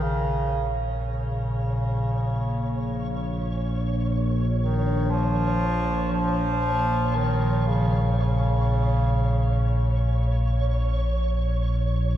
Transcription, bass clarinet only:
X:1
M:4/4
L:1/16
Q:1/4=59
K:Bbm
V:1 name="Bass clarinet" clef=bass
D,3 z D,8- D,2 z2 | z2 E,2 F,4 F,4 E,2 D,2 | D,8 z8 |]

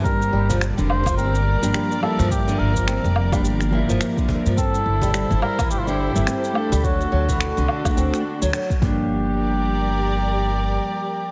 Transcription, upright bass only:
X:1
M:4/4
L:1/16
Q:"Swing 16ths" 1/4=106
K:Gdor
V:1 name="Upright bass" clef=bass
G,,2 G,,,3 F,,,3 G,,,3 G,,, z3 G,,- | G,,2 G,,,3 F,,,3 G,,,3 G,,, z3 G,,- | G,,2 G,,,3 G,,, z2 G,,,3 G,,, z3 D,,- | D,,2 D,,3 C,, z2 D,, z2 D,, z2 G,,,2- |
G,,,12 z4 |]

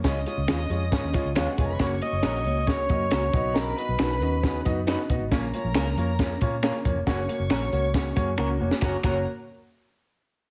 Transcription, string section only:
X:1
M:4/4
L:1/8
Q:1/4=137
K:F#
V:1 name="String section"
[dd']6 (3[Dd]/2 [Ee]/2 [Ff]/2 (3[Gg]/2 [Aa]/2 [Bb]/2 | [cc']6 z [Bb]- | [Bb]6- [Bb] z | [Aa]6- [Aa] z |
[cc']6- [cc'] z | [Fca] [Fca] z6 |]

